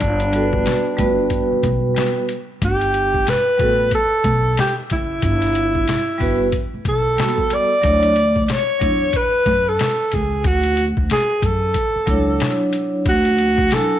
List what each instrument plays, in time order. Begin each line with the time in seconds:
Already playing: alto saxophone D4
0.00 upright bass G1, kick, closed hi-hat
0.20 closed hi-hat
0.32 vibraphone G3 B3 F#4 A4, closed hi-hat
0.42 vibraphone B4
0.53 kick
0.66 snare, closed hi-hat
0.97 upright bass G1, vibraphone G3 B3 F#4 B4, kick, closed hi-hat
1.30 kick, closed hi-hat
1.52 muted upright bass stroke
1.63 upright bass B1, kick, closed hi-hat
1.95 vibraphone G3 B3 F#4 B4, snare, closed hi-hat
2.29 closed hi-hat
2.62 upright bass G1, alto saxophone G4, kick, closed hi-hat
2.81 closed hi-hat
2.94 closed hi-hat
3.14 kick
3.27 alto saxophone B4, snare, closed hi-hat
3.57 upright bass A1, vibraphone G3 B3 F#4 A4, kick, closed hi-hat
3.91 alto saxophone A4, kick, closed hi-hat
4.24 upright bass B1, kick, closed hi-hat
4.57 alto saxophone G4, snare, closed hi-hat
4.90 upright bass F#1, alto saxophone E4, kick, closed hi-hat
5.22 upright bass G1, kick, closed hi-hat
5.42 snare, closed hi-hat
5.55 closed hi-hat
5.75 kick
5.88 snare, closed hi-hat
6.18 upright bass G1, vibraphone G3 B3 F#4 B4, kick, open hi-hat
6.52 kick, closed hi-hat
6.74 muted upright bass stroke
6.85 upright bass B1, alto saxophone A4, kick, closed hi-hat
7.16 vibraphone G3 A#3 F#4 A4, snare, closed hi-hat
7.24 vibraphone B3
7.38 kick
7.50 alto saxophone D5, closed hi-hat
7.82 upright bass D2, vibraphone F#3 D4 E4 C#5, kick, closed hi-hat
8.03 closed hi-hat
8.16 closed hi-hat
8.36 kick
8.46 alto saxophone D5, closed hi-hat
8.50 alto saxophone C#5, snare
8.79 upright bass E2, vibraphone F#3 D4 E4 C#5, kick, closed hi-hat
9.13 alto saxophone B4, kick, closed hi-hat
9.46 upright bass F#2, kick, closed hi-hat
9.69 alto saxophone A4
9.79 snare, closed hi-hat
10.12 upright bass C#2, alto saxophone G#4, kick, closed hi-hat
10.44 upright bass D2, alto saxophone F#4, kick, closed hi-hat
10.63 closed hi-hat
10.77 closed hi-hat
10.97 upright bass D2, kick
11.10 alto saxophone G#4, snare, closed hi-hat
11.42 upright bass F#2, alto saxophone A4, kick, closed hi-hat
11.74 kick, closed hi-hat
11.96 muted upright bass stroke
12.06 upright bass C#2, vibraphone F#3 D4 E4 C#5, kick, closed hi-hat
12.40 snare, closed hi-hat
12.73 closed hi-hat
13.06 upright bass D2, alto saxophone F#4, kick, closed hi-hat
13.25 closed hi-hat
13.38 closed hi-hat
13.58 kick
13.69 vibraphone F#3 D4 E4 G#5, alto saxophone A4, snare, closed hi-hat